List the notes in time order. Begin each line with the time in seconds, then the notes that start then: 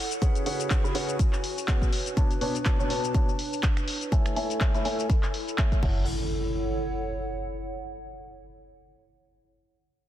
Already playing: E4 A4 C#5 F#5
0.11 closed hi-hat, shaker
0.22 C#3 C#4 F#4 G#4 B4 F#5, kick, closed hi-hat, shaker
0.35 closed hi-hat, shaker
0.46 C#3 C#4 G#4 B4 F#5, open hi-hat
0.60 closed hi-hat, shaker
0.70 C#3 C#4 G#4 B4 F#5 G#5, kick, clap, closed hi-hat, shaker
0.84 C#3 C#4 G#4 B4 B5, shaker
0.95 C#3 C#4 G#4 B4 F#5, open hi-hat
1.09 closed hi-hat, shaker
1.19 kick, closed hi-hat, shaker
1.33 clap, shaker
1.44 open hi-hat
1.58 shaker
1.68 B2 C#4 G#4 B4 F#5, kick, clap, closed hi-hat, shaker
1.82 kick, shaker
1.93 D4, open hi-hat
2.06 closed hi-hat, shaker
2.17 B2 D4 B4 C#5 A5, kick, closed hi-hat, shaker
2.31 closed hi-hat, shaker
2.41 B2 D4 B4 C#5 A5, open hi-hat
2.55 A5, closed hi-hat, shaker
2.65 B2 D4 B4 C#5 A5, kick, clap, closed hi-hat, shaker
2.79 B2 D4 B4 C#5 A5, shaker
2.90 B2 D4 B4 C#5 A5, open hi-hat
3.04 closed hi-hat, shaker
3.14 B2 D4 B4 C#5 A5, kick, closed hi-hat, shaker
3.29 shaker
3.39 open hi-hat
3.53 shaker
3.63 kick, clap, closed hi-hat, shaker
3.77 finger snap, shaker
3.88 E4, open hi-hat
4.01 closed hi-hat, shaker
4.10 A3 E4 A4 C#5 G#5, kick, closed hi-hat, shaker
4.26 finger snap, closed hi-hat, shaker
4.34 A3 E4 A4 C#5 G#5, open hi-hat
4.50 closed hi-hat, shaker
4.61 A3 E4 C#5, kick, clap, closed hi-hat, shaker
4.74 A3 E4 A4 C#5 B5, closed hi-hat, shaker
4.85 A3 E4 A4 C#5 G#5, open hi-hat
4.99 closed hi-hat, shaker
5.10 kick, closed hi-hat, shaker
5.23 clap, closed hi-hat, shaker
5.34 open hi-hat
5.48 closed hi-hat, shaker
5.58 A3 E4 A4 C#5 G#5, finger snap, kick, clap, closed hi-hat, shaker
5.72 kick, closed hi-hat, shaker
5.83 F#1 E4 A4 C#5 F#5, kick, crash, impact
5.91 A4
6.23 C#5
6.29 F#5